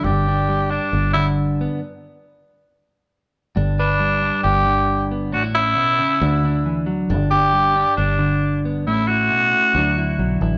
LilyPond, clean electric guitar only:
\new Staff \with { instrumentName = "Clean electric guitar" } { \time 4/4 \key g \major \tempo 4 = 136 << { d'8 d'4 d'2 b8 | r1 | d'8 b'4 d'2 b8 | d'16 e'16 cis'4. d'8 d'4. |
d'8 d'4 d'2 b8 | <a cis'>8 e'4. <fis d' e'>8 e'4 e'8 | } \\ { g,4 g4. d4. | r1 | g,4 g4. d4. | a,4 b,8 cis8 d4 e8 fis8 |
g,4 g4. d4. | a,4 b,8 r8 d4 fis4 | } >> }